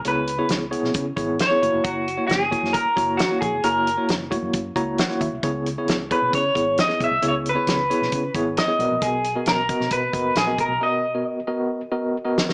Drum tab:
HH |x-x-x-x-x-x-x-x-|x-x-x-x-x-x-x-x-|x-x-x-x-x-x-x-x-|x-x-x-x-x-x-x-x-|
SD |----o--o----o---|----o--o----o---|----o-------oo--|----o-------oo--|
BD |--------o-o-----|o-----o-o-o---o-|------o-o-o---o-|o-----o-o-o---o-|

HH |x-x-x-x-x-x-x-x-|x-x-x-x-x-x-x-x-|----------------|
SD |----o--o----o---|----o--o----o---|--------------oo|
BD |--------o-o-----|o-----o-o-o---o-|----------------|